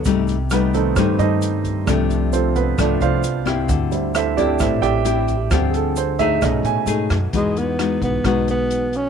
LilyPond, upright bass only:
\new Staff \with { instrumentName = "Upright bass" } { \clef bass \time 4/4 \key d \mixolydian \tempo 4 = 132 c,2 g,8 g,4. | c,2 c,8 c,4. | d,2 a,,8 a,,4. | d,2 b,,8 a,8 gis,8 fis,8 |
\key e \major e,4. b,,8 b,,2 | }